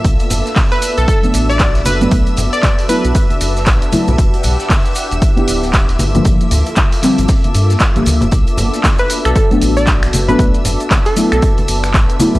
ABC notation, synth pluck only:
X:1
M:4/4
L:1/16
Q:"Swing 16ths" 1/4=116
K:Bm
V:1 name="Synth pluck"
z4 z B2 A A z2 d2 z B2 | z3 d2 z B3 z6 z | z16 | z16 |
z4 z B2 A A z2 d2 z2 B- | B z4 A2 A6 z3 |]